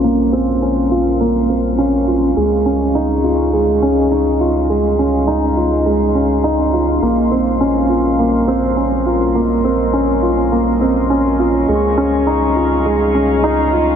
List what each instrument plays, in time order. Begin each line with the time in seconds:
Already playing: analog synth bass A#1, felt piano A#3 C4 C#4 F4, string section A#4 F5 C6
0.04 felt piano A#3
0.33 felt piano C4
0.62 felt piano C#4
0.91 felt piano F4
1.20 felt piano A#3
1.50 felt piano C4
1.78 felt piano C#4
2.08 felt piano F4
2.37 analog synth bass C#2, felt piano G#3, string section G#4 D#5 C#6
2.66 felt piano C#4
2.95 felt piano D#4
3.24 felt piano F4
3.53 felt piano G#3
3.82 felt piano C#4
4.11 felt piano D#4
4.40 felt piano F4
4.70 felt piano G#3, string section C6
4.99 felt piano C#4
5.27 felt piano D#4
5.57 felt piano F4
5.86 felt piano G#3
6.15 felt piano C#4
6.44 felt piano D#4
6.73 felt piano F4
7.02 analog synth bass A#1, felt piano A#3, string section A#4 F5
7.31 felt piano C4
7.61 felt piano C#4
7.90 felt piano F4
8.19 felt piano A#3
8.48 felt piano C4
8.77 felt piano C#4
9.06 felt piano F4
9.35 felt piano A#3, string section D#5
9.64 felt piano C4
9.93 felt piano C#4
10.23 felt piano F4
10.52 felt piano A#3
10.81 felt piano C4
11.10 felt piano C#4
11.39 felt piano F4
11.68 analog synth bass C#2, felt piano G#3, string section G#4 F5 C#6
11.98 felt piano C#4
12.27 felt piano D#4
12.56 felt piano F4
12.85 felt piano G#3
13.15 felt piano C#4
13.44 felt piano D#4
13.73 felt piano F4